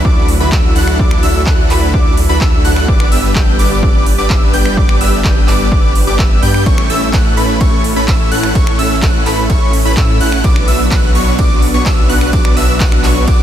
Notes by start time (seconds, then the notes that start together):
Already playing: F#3 D4 E4
0.05 D2 D4 E4 F#4 A4 D5 D6, kick
0.28 open hi-hat
0.40 D2 D4 E4 F#4 A4 B4 B5
0.52 D2 D4 E4 E5 E6, kick, clap
0.76 D2 D4 E4 F#4 A4 F#5 F#6, open hi-hat
0.88 finger snap
0.99 D2 D4 E4 F#4 A4 D5 D6, kick
1.11 finger snap
1.23 D2 D4 E4 F#4 A4 E5 E6, open hi-hat
1.46 D2 D4 F#5 F#6, kick, clap
1.70 D2 D4 E4 F#4 A4 B4 B5, clap, open hi-hat
1.94 D2 D4 E4 F#4 A4 D5 D6, kick
2.17 open hi-hat
2.29 D2 D4 E4 F#4 A4 B4 B5
2.41 D2 D4 E4 F#4 A4 E5 E6, kick, clap
2.65 D2 D4 E4 F#4 A4 F#5 F#6, open hi-hat
2.76 finger snap
2.88 G1 G3 B3 D4 B4 D5 D6, kick
3.00 finger snap
3.12 G1 B3 D4 G4 B4 E5 E6, open hi-hat
3.35 G1 D4 G4 G6, kick, clap
3.59 G1 B3 D4 G4 B4 D5 D6, open hi-hat
3.83 G1 B3 D4 G4 B4 D5 D6, kick
4.06 open hi-hat
4.18 G1 B3 D4 G4 B4 D5 D6
4.30 G1 D4 E5 E6, kick, clap
4.54 G1 B3 D4 G4 B4 G5 G6, open hi-hat
4.65 finger snap
4.77 G1 B3 D4 G4 B4 D5 D6, kick
4.89 finger snap
5.01 G1 B3 D4 G4 B4 E5 E6, open hi-hat
5.24 G1 B3 D4 G4 B4 G5 G6, kick, clap
5.48 G1 B3 D4 G4 B4 D5 D6, clap, open hi-hat
5.72 G1 B3 D4 G4 B4 D5 D6, kick
5.95 open hi-hat
6.07 G1 B3 D4 G4 B4 D5 D6
6.19 G1 B3 D4 G4 B4 E5 E6, kick, clap
6.43 G2 B3 D4 G4 B4 G5 G6, open hi-hat
6.54 finger snap
6.66 A1 A3 C#4 E4 A4 C#5 C#6, kick, ride
6.78 finger snap
6.90 A1 A3 C#4 E4 A4 E5 E6, open hi-hat
7.13 A1 A3 E4 F#5 F#6, kick, clap, ride
7.37 A1 A3 C#4 E4 A4 B4 B5, open hi-hat
7.61 A1 A3 C#4 E4 A4 C#5 C#6, kick, ride
7.84 open hi-hat
7.96 A1 A3 C#4 E4 A4 B4 B5
8.08 A1 A3 C#4 E6, kick, clap, ride
8.32 A1 A3 C#4 E4 A4 F#5 F#6, open hi-hat
8.43 finger snap
8.55 A1 A3 C#4 E4 A4 C#5 C#6, kick, ride
8.67 finger snap
8.79 A1 A3 C#4 E4 A4 E5 E6, open hi-hat
9.02 A1 A3 C#4 E4 A4 F#5 F#6, kick, clap, ride
9.26 A1 A3 C#4 E4 A4 B4 B5, clap, open hi-hat
9.50 A1 A3 E4 A4 C#5 C#6, kick, ride
9.73 open hi-hat
9.85 A1 A3 C#4 E4 A4 B4 B5
9.97 A2 A3 E6, kick, clap, ride
10.21 A1 A3 C#4 E4 A4 F#5 F#6, open hi-hat
10.32 finger snap
10.44 B1 F#3 B3 D4 F#4 B4 D5 D6, kick, ride
10.56 finger snap
10.68 B1 B3 D4 F#4 B4 E5 E6, open hi-hat
10.91 B1 B3 D4 F#4 B4 F#5 F#6, kick, clap, ride
11.15 B1 B3 D4 F#4 B4 C#5 C#6, open hi-hat
11.39 B1 B3 D4 F#4 B4 D5 D6, kick, ride
11.62 open hi-hat
11.74 B1 B3 D4 F#4 B4 C#5 C#6
11.86 B1 B3 D4 F#4 B4 E5 E6, kick, clap, ride
12.09 B1 B3 D4 F#4 B4 F#5 F#6, open hi-hat
12.21 finger snap
12.33 B1 B3 D4 F#4 B4 D5 D6, kick, ride
12.45 finger snap
12.57 B1 B3 D4 F#4 B4 E5 E6, open hi-hat
12.80 B1 B3 D4 F#4 B4 F#5 F#6, kick, clap, ride
12.92 finger snap
13.04 B1 B3 D4 F#4 B4 C#5 C#6, clap, open hi-hat
13.28 B1 B3 D4 F#4 B4 D5 D6, kick, ride